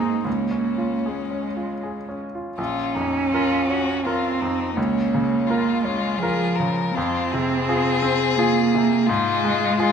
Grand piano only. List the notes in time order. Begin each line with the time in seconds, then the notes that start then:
Already playing: G#2 C4
0.00 D#4 G#4
0.25 C#2
0.51 C#4
0.78 F4
1.06 G#4
1.31 C#4
1.56 F4
1.83 G#4
2.09 C#4
2.35 F4
2.58 A#1
2.96 F2
3.34 F4 A#4
3.70 C#4
4.06 F4 A#4
4.42 F2
4.77 C#2
5.14 C#3
5.50 F4 A#4
5.85 C#4
6.22 F4 A#4
6.60 C#3
6.97 F2
7.34 C3
7.69 F4 G#4
8.02 C4
8.38 F4 G#4
8.75 C3
9.09 G#2
9.45 G#3
9.79 F4 G#4